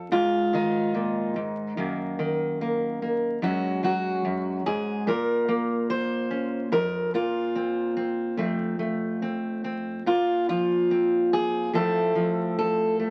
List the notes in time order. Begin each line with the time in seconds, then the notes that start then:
Already playing: F2 A4
0.12 G#2 F4
0.53 D#3 D#4
0.94 A#2
1.36 G#2
1.77 F#2 D#3 A#3
2.19 D#3
2.61 A#3
3.02 A#3
3.42 F#2 F#3 G#3 C#4 F#4
3.83 F#3 F#4
4.25 F#2
4.66 G#2 G#4
5.07 A#2 A#4
5.48 A#3
5.90 C5
6.31 C#4
6.72 F2 A#4
7.14 A#2 F4
7.55 C4
7.97 C4
8.37 F2 A3 C4
8.79 A3
9.22 C4
9.64 C4
10.06 A#2 F4
10.49 F3 F4
10.91 C4
11.33 G#4
11.73 A2 F3 A3 C4 A4
12.15 F3
12.59 A4
12.99 A3